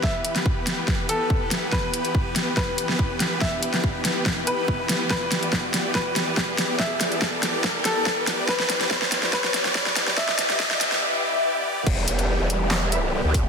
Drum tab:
CC |----------------|----------------|----------------|----------------|
HH |--xx--x---x---x-|--xx--x---x---x-|--xx--x---x---x-|--xx--x---x---o-|
CP |----------------|----------------|----------------|----------------|
SD |o--o--o-o-----o-|o-----o-o--o--o-|o--o--o-o-----o-|o-o-o-o-o-o-o-o-|
BD |o---o---o---o---|o---o---o---o---|o---o---o---o---|o---o---o---o---|

CC |----------------|----------------|----------------|x---------------|
HH |--xx--x---x---o-|--xx--x---x---o-|--xx--x---------|--xx--x---x---o-|
CP |----------------|----------------|----------------|--------x-------|
SD |o-o-o-o-o-o-o-o-|oooooooooooooooo|oooooooo--------|--------o-------|
BD |o---o---o---o---|o---o---o---o---|o---o-----------|o-------------o-|